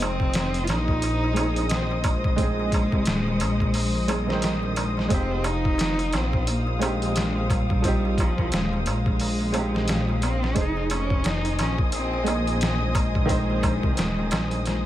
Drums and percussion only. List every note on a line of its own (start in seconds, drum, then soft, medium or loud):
0.00 closed hi-hat medium
0.00 darbuka tek loud
0.20 kick medium
0.20 darbuka tek soft
0.34 snare loud
0.34 closed hi-hat medium
0.34 darbuka tek medium
0.54 closed hi-hat soft
0.54 darbuka tek soft
0.67 snare medium
0.67 closed hi-hat medium
0.67 darbuka tek medium
0.88 kick medium
0.88 darbuka tek soft
1.02 closed hi-hat medium
1.02 darbuka tek medium
1.24 darbuka tek soft
1.36 closed hi-hat medium
1.36 darbuka tek medium
1.56 closed hi-hat soft
1.56 darbuka tek soft
1.69 snare loud
1.69 closed hi-hat medium
1.69 darbuka tek medium
1.91 darbuka tek soft
2.04 kick loud
2.04 closed hi-hat medium
2.04 darbuka tek loud
2.24 kick loud
2.24 darbuka tek soft
2.38 kick loud
2.38 closed hi-hat medium
2.38 darbuka tek soft
2.60 darbuka tek soft
2.72 kick loud
2.72 closed hi-hat medium
2.72 darbuka tek loud
2.92 kick medium
2.92 darbuka tek soft
3.05 snare loud
3.05 closed hi-hat medium
3.05 darbuka tek medium
3.28 darbuka tek soft
3.40 closed hi-hat medium
3.40 darbuka tek medium
3.60 kick medium
3.60 darbuka tek soft
3.74 open hi-hat medium
3.74 darbuka tek medium
3.95 darbuka tek soft
4.08 closed hi-hat medium
4.08 darbuka tek loud
4.29 snare medium
4.29 darbuka tek soft
4.42 snare loud
4.42 closed hi-hat medium
4.42 darbuka tek medium
4.63 darbuka tek soft
4.76 closed hi-hat medium
4.76 darbuka tek medium
4.97 snare soft
4.97 darbuka tek soft
5.10 kick loud
5.10 closed hi-hat medium
5.10 darbuka tek soft
5.32 darbuka tek soft
5.44 closed hi-hat medium
5.44 darbuka tek loud
5.65 kick medium
5.65 darbuka tek soft
5.78 snare loud
5.78 closed hi-hat medium
5.78 darbuka tek medium
5.99 closed hi-hat soft
5.99 darbuka tek soft
6.13 snare medium
6.13 closed hi-hat medium
6.13 darbuka tek medium
6.33 kick medium
6.33 darbuka tek soft
6.47 closed hi-hat medium
6.47 darbuka tek medium
6.67 darbuka tek soft
6.82 closed hi-hat medium
6.82 darbuka tek loud
7.02 closed hi-hat soft
7.02 darbuka tek soft
7.16 snare loud
7.16 closed hi-hat medium
7.16 darbuka tek medium
7.37 darbuka tek soft
7.50 kick loud
7.50 closed hi-hat medium
7.50 darbuka tek medium
7.70 kick loud
7.70 darbuka tek soft
7.84 kick loud
7.84 closed hi-hat medium
7.84 darbuka tek medium
8.05 darbuka tek soft
8.18 kick loud
8.18 closed hi-hat medium
8.18 darbuka tek medium
8.38 kick medium
8.38 darbuka tek soft
8.52 snare loud
8.52 closed hi-hat medium
8.52 darbuka tek medium
8.73 darbuka tek soft
8.86 closed hi-hat medium
8.86 darbuka tek medium
9.06 kick medium
9.06 darbuka tek soft
9.20 open hi-hat medium
9.20 darbuka tek medium
9.40 darbuka tek soft
9.54 closed hi-hat medium
9.54 darbuka tek medium
9.75 snare medium
9.75 darbuka tek soft
9.88 snare loud
9.88 closed hi-hat medium
9.88 darbuka tek medium
10.09 darbuka tek soft
10.22 closed hi-hat medium
10.22 darbuka tek medium
10.43 snare soft
10.43 darbuka tek soft
10.56 kick loud
10.56 closed hi-hat medium
10.56 darbuka tek soft
10.77 darbuka tek soft
10.90 closed hi-hat medium
10.90 darbuka tek loud
11.10 kick medium
11.10 darbuka tek soft
11.24 snare loud
11.24 closed hi-hat medium
11.24 darbuka tek medium
11.45 closed hi-hat soft
11.45 darbuka tek soft
11.59 snare medium
11.59 closed hi-hat medium
11.59 darbuka tek medium
11.78 kick medium
11.78 darbuka tek soft
11.92 closed hi-hat loud
11.92 darbuka tek soft
12.13 darbuka tek soft
12.27 closed hi-hat medium
12.27 darbuka tek medium
12.47 closed hi-hat soft
12.47 darbuka tek soft
12.61 snare loud
12.61 closed hi-hat medium
12.61 darbuka tek medium
12.82 darbuka tek soft
12.95 kick loud
12.95 closed hi-hat medium
12.95 darbuka tek medium
13.15 kick loud
13.15 darbuka tek soft
13.29 kick loud
13.29 closed hi-hat medium
13.29 darbuka tek soft
13.50 darbuka tek soft
13.63 kick loud
13.63 closed hi-hat medium
13.63 darbuka tek loud
13.83 kick medium
13.83 darbuka tek soft
13.97 snare loud
13.97 closed hi-hat medium
13.97 darbuka tek medium
14.19 darbuka tek soft
14.31 snare loud
14.31 closed hi-hat medium
14.31 darbuka tek medium
14.51 closed hi-hat soft
14.51 darbuka tek soft
14.66 snare medium
14.66 closed hi-hat medium
14.66 darbuka tek medium